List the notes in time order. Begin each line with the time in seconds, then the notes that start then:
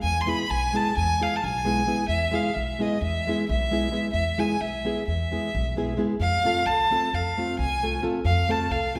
0.03 E2 G#5
0.21 C6
0.26 G#3 B3 E4 G#4 B5
0.50 B1 G#5
0.73 G#3 B3 E4 G#4 A5
0.97 E2 G#5
1.20 G#3 B3 E4 G#4 F5
1.36 A5
1.44 B1 G#5
1.65 G#3 B3 E4 G#4
1.87 G#3 B3 E4 G#4
2.08 E2 E5
2.31 G#3 B3 E4 G#4 F5
2.54 B1 E5
2.79 G#3 B3 E4 G#4 D#5
3.01 E2 E5
3.27 G#3 B3 E4 G#4
3.49 B1 E5
3.71 G#3 B3 E4 G#4
3.91 G#3 B3 E4 G#4
4.13 E2 E5
4.38 G#3 B3 E4 G#4 G#5
4.60 B1 E5
4.84 G#3 B3 E4 G#4
5.08 E2 E5
5.32 G#3 B3 E4 G#4
5.55 B1
5.76 G#3 B3 E4 G#4
5.97 G#3 B3 E4 G#4
6.20 F2 F5
6.44 A3 C4 F4 A4
6.66 C2 A5
6.91 A3 C4 F4 A4
7.13 F2 F5
7.38 A3 C4 F4 A4
7.59 C2 G#5
7.83 A3 C4 F4 A4
8.02 A3 C4 F4 A4
8.24 F2 F5
8.49 A3 C4 F4 A4 A5
8.70 C2 F5
8.95 A3 C4 F4